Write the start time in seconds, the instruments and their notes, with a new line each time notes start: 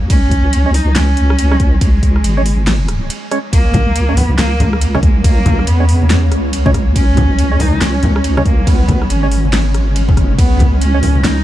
0.10 wobble bass C#2, cello C#4, kick, closed hi-hat, ride
0.31 kick, closed hi-hat
0.53 closed hi-hat, ride
0.66 synth stab G#3 C#4 C#5
0.74 cello D#4, open hi-hat
0.95 wobble bass C#2, cello C#4, snare, clap, closed hi-hat, ride
1.17 closed hi-hat
1.30 cross-stick
1.39 closed hi-hat, ride
1.51 synth stab G#3 C#4 C#5, cross-stick
1.60 kick, closed hi-hat
1.81 cello G#3, kick, closed hi-hat, ride
2.03 kick, closed hi-hat
2.16 cross-stick
2.24 wobble bass G#1, closed hi-hat, ride
2.37 synth stab G#3 C#4 C#5
2.46 open hi-hat
2.67 cross-stick, snare, clap, closed hi-hat, ride
2.88 cross-stick, closed hi-hat
3.10 closed hi-hat, ride
3.31 synth stab G#3 C#4 C#5, cross-stick, closed hi-hat
3.53 wobble bass C#2, ambient pad G#3 C#4 C#5, cello A#3, kick, closed hi-hat, ride
3.74 kick, closed hi-hat, high conga, low conga
3.96 closed hi-hat, ride
4.09 synth stab G#3 C#4 C#5
4.17 cello B3, open hi-hat, low conga
4.30 high conga
4.38 wobble bass C#2, cello A#3, snare, clap, closed hi-hat, ride
4.60 closed hi-hat, low conga
4.73 cross-stick
4.81 closed hi-hat, ride
4.95 synth stab G#3 C#4 C#5, cross-stick, high conga
5.03 cello G#3, kick, closed hi-hat
5.24 cello A#3, kick, closed hi-hat, ride
5.46 kick, closed hi-hat, high conga, low conga
5.59 cross-stick
5.67 wobble bass E2, cello B3, closed hi-hat, ride
5.80 synth stab G#3 C#4 C#5
5.89 open hi-hat
6.02 high conga
6.10 snare, clap, closed hi-hat, ride
6.31 wobble bass C#2, cross-stick, closed hi-hat
6.53 closed hi-hat, ride
6.66 synth stab G#3 C#4 C#5, kick, high conga
6.74 wobble bass C#2, kick, cross-stick, closed hi-hat
6.96 wobble bass C#2, cello C#4, kick, closed hi-hat, ride
7.17 kick, closed hi-hat, high conga, low conga
7.39 closed hi-hat, ride
7.52 synth stab G#3 C#4 C#5
7.60 cello D#4, open hi-hat, low conga
7.73 high conga
7.81 wobble bass C#2, cello C#4, snare, clap, closed hi-hat, ride
8.03 closed hi-hat, low conga
8.16 cross-stick
8.24 closed hi-hat, ride
8.37 synth stab G#3 C#4 C#5, cross-stick, high conga
8.46 cello A#3, kick, closed hi-hat
8.67 cello B3, kick, closed hi-hat, ride
8.88 kick, closed hi-hat, high conga, low conga
9.02 cross-stick
9.10 wobble bass G#1, cello C#4, closed hi-hat, ride
9.23 synth stab G#3 C#4 C#5
9.31 open hi-hat
9.45 high conga
9.53 snare, clap, closed hi-hat, ride
9.74 cross-stick, closed hi-hat
9.96 wobble bass G1, closed hi-hat, ride
10.08 kick, high conga
10.17 kick, cross-stick, closed hi-hat
10.25 wobble bass F#1
10.38 wobble bass C#2, cello B3, ambient pad C#5, kick, closed hi-hat, ride
10.59 kick, closed hi-hat, high conga, low conga
10.81 cello C#4, closed hi-hat, ride
10.94 synth stab G#3 C#4 C#5
11.03 open hi-hat, low conga
11.15 high conga
11.24 wobble bass C#2, cello D#4, snare, clap, closed hi-hat, ride